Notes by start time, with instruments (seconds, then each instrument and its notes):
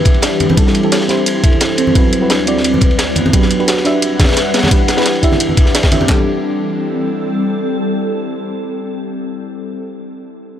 Already playing: ambient pad E3 D4 G4, fm electric piano D4 E4 G4 B4 E5
0.05 kick, closed hi-hat, ride
0.14 ride
0.22 synth pluck D4, snare, closed hi-hat, ride
0.40 closed hi-hat, ride, high conga
0.49 ride, high conga
0.57 synth pluck G3, ambient pad G3 C4 A4, fm electric piano C4 E4 G4 A4, kick, closed hi-hat, ride
0.67 snare
0.75 closed hi-hat, ride
0.83 fm electric piano C4 E4 G4 A4, ride
0.92 synth pluck G4, snare, closed hi-hat, ride
1.01 snare
1.08 fm electric piano C4 E4 G4 C5, synth pluck E4, snare, closed hi-hat, ride
1.26 closed hi-hat, ride
1.44 synth pluck E4, kick, closed hi-hat, ride, high conga
1.52 ride
1.60 snare, closed hi-hat, ride
1.78 synth pluck C4, closed hi-hat, ride
1.87 high conga
1.95 synth pluck F#3, fm electric piano C4 E4 F#4 B4, kick, closed hi-hat, ride
2.13 closed hi-hat, ride
2.21 fm electric piano C4 E4 F#4 B4
2.30 synth pluck D4, snare, closed hi-hat, ride
2.39 ride
2.46 fm electric piano C4 E4 F#4 D5, synth pluck C4, closed hi-hat, ride
2.57 snare
2.64 closed hi-hat, ride
2.74 high conga
2.81 synth pluck C4, kick, closed hi-hat, ride
2.91 ride
2.99 snare, closed hi-hat, ride
3.16 ambient pad G3 B4 F#5, synth pluck B3, closed hi-hat, ride, high conga
3.26 ride, high conga
3.33 synth pluck F#3, fm electric piano D4 F#4 G4 B4, kick, closed hi-hat, ride
3.42 snare
3.50 closed hi-hat, ride
3.59 fm electric piano D4 F#4 G4 B4, ride
3.68 synth pluck F#4, snare, closed hi-hat, ride
3.77 snare
3.84 fm electric piano D4 F#4 G4 E5, synth pluck D4, snare, closed hi-hat, ride
4.02 closed hi-hat, ride
4.19 synth pluck D4, kick, snare, closed hi-hat, ride, high conga
4.24 snare, ride
4.29 snare, ride
4.32 snare, ride
4.37 snare, closed hi-hat, ride
4.54 synth pluck B3, snare, closed hi-hat, ride
4.58 snare, ride
4.63 snare, ride, high conga
4.67 fm electric piano D4, snare, ride
4.71 ambient pad E3 D4 G4, synth pluck G3, fm electric piano E4 G4 B4, kick, closed hi-hat, ride
4.88 snare, closed hi-hat, ride
4.97 fm electric piano D4 E4 G4 B4, snare, ride
5.02 snare, ride
5.06 synth pluck G4, snare, closed hi-hat, ride
5.15 ride
5.22 fm electric piano D4 E4 G4 E5, synth pluck E4, kick, closed hi-hat, ride
5.32 snare, high conga
5.40 closed hi-hat, ride
5.49 high conga
5.57 kick, closed hi-hat, ride
5.66 snare
5.74 synth pluck D4, snare, closed hi-hat, ride
5.83 kick, snare, ride
5.91 fm electric piano D4 E4 G4 E5, closed hi-hat, ride, high conga
6.00 ride, high conga
6.08 synth pluck G3, ambient pad G3 C4 A4, fm electric piano C4 E4 G4 A4, kick, snare, clap